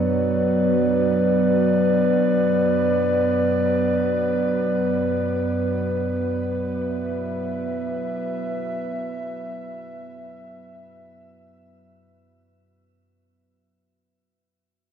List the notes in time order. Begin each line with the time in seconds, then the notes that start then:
Already playing: F#2 F#3 B3 D4 F#4 B4 D5
6.71 E5